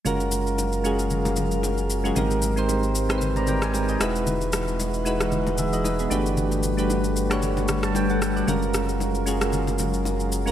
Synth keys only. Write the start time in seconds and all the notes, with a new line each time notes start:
0.05 G#3 C#4 F4 F#4 A#4
0.84 G#3 C#4 F4 F#4 G#4
2.04 G#3 C#4 F4 F#4 G#4
2.15 G#3 C4 D#4 G4 A#4
2.56 G#3 C4 D#4 G4 C5
3.09 G#3 C4 D#4 G4 B4
3.18 C5
3.37 D5 A#5
3.48 A#4 G5
3.63 C5 G#5
3.74 A#4 G5
3.89 G4 D#5
4.00 G#3 D#4 E4 F#4 B4
5.05 G#3 D#4 E4 F#4 B4
5.59 G#4 E5
5.73 F#4 D#5
5.85 D#4 B4
6.00 B3 G#4
6.10 A3 D4 F#4 G4 B4
6.77 A3 D4 F#4 G4 B4
7.30 A3 D4 F#4 G4 C#5
7.84 C#5 A5
7.96 B4 G5
8.10 A4 F#5
8.36 F#4 D5
8.47 G#3 C#4 F4 F#4 A#4
9.26 G#3 C#4 F4 F#4 G#4
10.46 G#3 C#4 F4 F#4 A#4